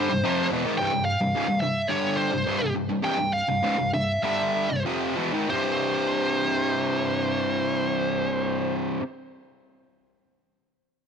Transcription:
Already playing: distorted electric guitar D3 G3, lead electric guitar C5
0.10 distorted electric guitar C2 G2
0.24 distorted electric guitar F2 C3 F3
0.51 distorted electric guitar E2 B2
0.65 distorted electric guitar G#2 D#3
0.78 distorted electric guitar C2 G2, lead electric guitar G5
0.93 distorted electric guitar C2 G2
1.05 lead electric guitar F5
1.21 distorted electric guitar C2 G2
1.35 distorted electric guitar C#2 G#2
1.48 distorted electric guitar C2 G2
1.60 distorted electric guitar C2 G2, lead electric guitar E5
1.88 distorted electric guitar G2 D3 G3, lead electric guitar C#5
2.17 lead electric guitar C5
2.33 distorted electric guitar C2 G2
2.46 distorted electric guitar C2 G2
2.61 distorted electric guitar C2 G2
2.75 distorted electric guitar C2 G2
2.89 distorted electric guitar C2 G2
3.03 distorted electric guitar C2 G2, lead electric guitar G5
3.18 distorted electric guitar C2 G2
3.33 lead electric guitar F5
3.48 distorted electric guitar C2 G2
3.63 distorted electric guitar C#2 G#2
3.78 distorted electric guitar C2 G2
3.93 distorted electric guitar C2 G2, lead electric guitar E5
4.23 distorted electric guitar G2 D3 G3, lead electric guitar E5
4.70 distorted electric guitar C2 G2
4.85 distorted electric guitar F2 C3 F3
5.16 distorted electric guitar E2 B2
5.33 distorted electric guitar G#2 D#3
5.49 distorted electric guitar C2 G2, lead electric guitar C5
5.53 distorted electric guitar C3

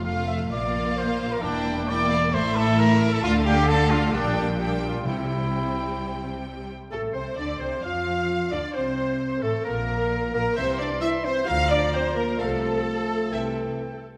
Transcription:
Already playing: double bass section F1, timpani F2, cello section F2
0.04 viola section A3, violin section F4 F5, trumpet section F5
0.28 trumpet section E5
0.51 double bass section A#1, cello section A#2, viola section A#3, violin section F4 F5, trumpet section D5
0.97 trumpet section C5
1.32 trumpet section A#4
1.41 double bass section E1, cello section E2, viola section A#3, trumpet section D4, violin section E4 G5
1.87 viola section A#3, violin section E4 G5, trumpet section D5
2.11 violin section F5
2.33 double bass section A1, cello section A2, viola section A3, violin section E4 E5, trumpet section C5
2.56 trumpet section A4
2.79 trumpet section A#4
3.13 trumpet section A4
3.23 double bass section D2, cello section D3, viola section A3, violin section D4 F5, trumpet section F4
3.45 trumpet section G4
3.68 viola section A3, violin section D4 F5, trumpet section A4
3.91 trumpet section F4
4.13 double bass section A#1, cello section A#2, viola section G3, trumpet section D4, violin section D4 G5
4.36 trumpet section D4
4.59 viola section G3, violin section D4 G5, trumpet section G4
4.82 trumpet section F4
5.05 double bass section C2, timpani C3, cello section C3, viola section G3, violin section C4 G5, trumpet section E4
6.91 double bass section A1, cello section A2, bassoon A3, french horn section A3, flute A4, oboe A4, viola section A4, clarinet A4, violin section A4
7.13 double bass section C2, cello section C3, bassoon C4, french horn section C4, oboe C5, violin section C5, flute C5, viola section C5, clarinet C5
7.37 double bass section D2, cello section D3, bassoon D4, french horn section D4, viola section D5, oboe D5, violin section D5, flute D5, clarinet D5
7.59 double bass section C2, cello section C3, french horn section C4, bassoon C4, violin section C5, viola section C5, flute C5, clarinet C5, oboe C5
7.83 double bass section F2, cello section F3, bassoon F4, french horn section F4, flute F5, viola section F5, clarinet F5, violin section F5, oboe F5
8.50 double bass section D2, cello section D3, bassoon D4, french horn section D4, flute D5, violin section D5, clarinet D5, viola section D5, oboe D5
8.73 double bass section C2, cello section C3, bassoon C4, french horn section C4, clarinet C5, flute C5, oboe C5, violin section C5, viola section C5
9.41 double bass section A1, cello section A2, bassoon A3, french horn section A3, viola section A4, violin section A4, clarinet A4, flute A4, oboe A4
9.64 double bass section A#1, cello section A#2, bassoon A#3, french horn section A#3, violin section A#4, clarinet A#4, flute A#4, oboe A#4, viola section A#4
10.32 double bass section A#1, cello section A#2, french horn section A#3, bassoon A#3, violin section A#4, viola section A#4, flute A#4, oboe A#4, clarinet A#4
10.56 double bass section C2, cello section C3, bassoon E3, french horn section C4, viola section C5, violin section C5 E5, clarinet C5, flute C5, oboe C6
10.79 french horn section D4, clarinet D5, violin section D5, flute D5, viola section D5
11.01 french horn section E4, viola section E5, clarinet E5, violin section E5, flute E5
11.24 french horn section C4, flute C5, violin section C5, clarinet C5, viola section C5
11.45 double bass section D2, cello section D3, bassoon F3, french horn section F4, violin section F5, viola section F5, flute F5, clarinet F5, oboe A#5
11.70 french horn section D4, viola section D5, violin section D5, flute D5, clarinet D5
11.92 french horn section C4, violin section C5, clarinet C5, viola section C5, flute C5
12.15 french horn section A#3, violin section A#4, viola section A#4, flute A#4, clarinet A#4
12.38 double bass section C2, cello section C3, french horn section A3, clarinet A4, viola section A4, flute A4, violin section A4 F5, oboe A5
13.32 double bass section C2, cello section C3, bassoon E3, violin section E5, oboe G5

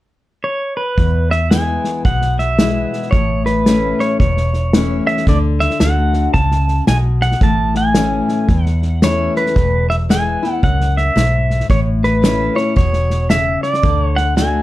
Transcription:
0.44 pedal steel guitar C#5
0.77 pedal steel guitar B4
0.98 fingered electric bass E2, steel-string acoustic guitar E2, kick, snare
1.31 pedal steel guitar E5, snare
1.51 steel-string acoustic guitar E3 G#3 B3 E4, pedal steel guitar G#5, snare, hi-hat pedal
1.84 snare
2.05 fingered electric bass B1, steel-string acoustic guitar B2, pedal steel guitar F#5, kick, snare
2.21 snare
2.39 pedal steel guitar E5, snare
2.58 steel-string acoustic guitar E3 G#3 B3 E4, snare, hi-hat pedal
2.93 snare
3.02 snare
3.11 fingered electric bass A1, steel-string acoustic guitar A2, pedal steel guitar C#5, kick, snare
3.46 pedal steel guitar B4, snare
3.66 steel-string acoustic guitar E3 A3 C#4 E4, snare, hi-hat pedal
4.00 pedal steel guitar C#5, snare
4.20 fingered electric bass E1, steel-string acoustic guitar E2, pedal steel guitar C#5, kick, snare
4.37 snare
4.53 snare
4.73 steel-string acoustic guitar E3 A3 C#4 E4, snare, hi-hat pedal
5.07 pedal steel guitar E5, snare
5.17 snare
5.27 fingered electric bass D2, steel-string acoustic guitar D3, pedal steel guitar D5, kick, snare
5.60 pedal steel guitar E5, snare
5.70 snare
5.80 fingered electric bass D2, steel-string acoustic guitar D3 A3 D4 F#4, pedal steel guitar F#5, snare, hi-hat pedal
6.13 snare
6.34 fingered electric bass C#2, steel-string acoustic guitar C#3, pedal steel guitar A5, kick, snare
6.51 snare
6.68 snare
6.87 fingered electric bass B1, steel-string acoustic guitar B2, pedal steel guitar G#5, snare, hi-hat pedal
7.21 pedal steel guitar F#5, snare
7.32 snare
7.41 fingered electric bass A1, steel-string acoustic guitar A2, pedal steel guitar A5, kick, snare
7.75 pedal steel guitar G#5, snare
7.95 steel-string acoustic guitar E3 A3 C#4 E4, snare, hi-hat pedal
8.29 snare
8.49 fingered electric bass E2, steel-string acoustic guitar E2, kick, snare
8.65 pedal steel guitar F#5, snare
8.82 snare
9.02 steel-string acoustic guitar E3 A3 C#4 E4, pedal steel guitar C#5, snare, hi-hat pedal
9.36 pedal steel guitar B4, snare
9.46 snare
9.56 fingered electric bass E1, steel-string acoustic guitar E2, kick, snare
9.90 pedal steel guitar E5, snare
10.09 steel-string acoustic guitar E3 G#3 B3 E4, pedal steel guitar G#5, snare, hi-hat pedal
10.43 steel-string acoustic guitar B3 E4, snare
10.63 fingered electric bass C#2, steel-string acoustic guitar F#2, pedal steel guitar F#5, kick, snare
10.81 snare
10.97 pedal steel guitar E5, snare
11.16 fingered electric bass B1, steel-string acoustic guitar G#2, snare, hi-hat pedal
11.50 snare
11.60 snare
11.69 fingered electric bass A1, steel-string acoustic guitar A2, pedal steel guitar C#5, kick, snare
12.03 pedal steel guitar B4, snare
12.22 steel-string acoustic guitar E3 A3 C#4 E4, snare, hi-hat pedal
12.55 steel-string acoustic guitar C#4 E4, pedal steel guitar C#5, snare
12.76 fingered electric bass E1, steel-string acoustic guitar B2, pedal steel guitar C#5, kick, snare
12.93 snare
13.10 snare
13.30 steel-string acoustic guitar C#3, pedal steel guitar E5, snare, hi-hat pedal
13.63 pedal steel guitar D5, snare
13.73 snare
13.83 fingered electric bass D2, steel-string acoustic guitar D3, kick, snare
14.03 pedal steel guitar C#5
14.16 pedal steel guitar F#5, snare
14.36 steel-string acoustic guitar D3 A3 D4 F#4, pedal steel guitar G#5, snare, hi-hat pedal

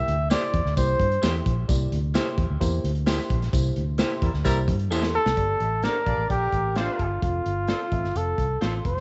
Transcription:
Already playing: reed electric piano C3 A#3 E4 G4 A#4, trumpet E5
0.08 fingered electric bass D2, closed hi-hat
0.30 clean electric guitar A#3 E4 G4 C5, reed electric piano A#3 E4 G4 C5, trumpet D5, snare, closed hi-hat, tambourine
0.54 fingered electric bass E2, kick, closed hi-hat
0.65 fingered electric bass D2, snare
0.77 fingered electric bass C2, reed electric piano A#3 E4 G4 C5, trumpet C5, kick, closed hi-hat, tambourine
1.00 fingered electric bass G2, kick, closed hi-hat
1.11 closed hi-hat
1.22 fingered electric bass E2, clean electric guitar A#3 E4 G4 C5, reed electric piano A#3 E4 G4 C5, snare, closed hi-hat, tambourine
1.46 fingered electric bass A#1, kick, closed hi-hat
1.68 fingered electric bass C2, reed electric piano C3 A#3 E4 G4 D5, kick, closed hi-hat, tambourine
1.92 fingered electric bass D2, closed hi-hat
2.14 clean electric guitar A#3 E4 G4 C5, reed electric piano A#3 E4 G4 C5, snare, closed hi-hat, tambourine
2.38 fingered electric bass E2, kick, closed hi-hat
2.50 fingered electric bass D2
2.60 fingered electric bass E2, reed electric piano A#3 E4 G4 C5, kick, closed hi-hat, tambourine
2.84 fingered electric bass D2, closed hi-hat
2.95 closed hi-hat
3.06 clean electric guitar A#3 E4 G4 C5, reed electric piano A#3 E4 G4 C5, snare, closed hi-hat, tambourine
3.19 snare
3.30 fingered electric bass A#1, kick, closed hi-hat
3.42 snare, closed hi-hat
3.52 fingered electric bass C2, reed electric piano C3 A#3 E4 G4 C5, kick, closed hi-hat, tambourine
3.76 fingered electric bass D2, closed hi-hat
3.98 clean electric guitar A#3 E4 G4 C5, reed electric piano A#3 E4 G4 C5, snare, closed hi-hat, tambourine
4.22 fingered electric bass E2, horn section G3 E4 A#4, kick, closed hi-hat
4.34 fingered electric bass D2, snare
4.45 fingered electric bass C2, horn section G3 E4 A#4, reed electric piano A#3 E4 G4 C5, kick, closed hi-hat, tambourine
4.68 fingered electric bass G2, kick, closed hi-hat
4.79 closed hi-hat
4.91 fingered electric bass E2, clean electric guitar A#3 E4 G4 C5, reed electric piano A#3 E4 G4 A4, tambourine
5.03 snare
5.15 trumpet A4
5.26 fingered electric bass C2, snare
5.37 fingered electric bass G1, reed electric piano G2 A#3 G4 A4 D5, kick, closed hi-hat
5.60 fingered electric bass A1, horn section A3 A4, closed hi-hat
5.83 horn section A#3 A#4, clean electric guitar A#3 D4 A4 D5, reed electric piano A#3 G4 A4 C5, trumpet A#4, snare, closed hi-hat
6.05 fingered electric bass A#1, reed electric piano A#3 G4 A4 F5, horn section D4 D5, kick, closed hi-hat
6.18 fingered electric bass A1
6.29 fingered electric bass A#1, reed electric piano A#3 G4 A4 D5, horn section A#3 A#4, trumpet G4, kick, closed hi-hat
6.52 fingered electric bass A1, kick, closed hi-hat
6.75 clean electric guitar A#3 D4 A4 D5, reed electric piano A#3 G4 A4 E5, horn section C4 C5, trumpet F4, snare, closed hi-hat
6.99 fingered electric bass G1, kick, closed hi-hat
7.22 fingered electric bass F1, reed electric piano C4 F4 A4 F5, trumpet F4, kick, closed hi-hat
7.46 fingered electric bass G1, closed hi-hat
7.67 clean electric guitar C4 F4 A4 C5, reed electric piano C4 F4 A4 D5, snare, closed hi-hat
7.92 fingered electric bass A1, reed electric piano C4 F4 A4 E5, kick, closed hi-hat
8.04 fingered electric bass G1, snare
8.15 fingered electric bass F1, reed electric piano C4 F4 A4 F5, trumpet A4, closed hi-hat
8.38 fingered electric bass C2, kick, closed hi-hat
8.61 fingered electric bass A1, clean electric guitar C4 F4 A4 C5, reed electric piano C4 F4 A4 F5, snare, closed hi-hat
8.85 fingered electric bass F1, trumpet C5, kick, closed hi-hat
8.97 snare

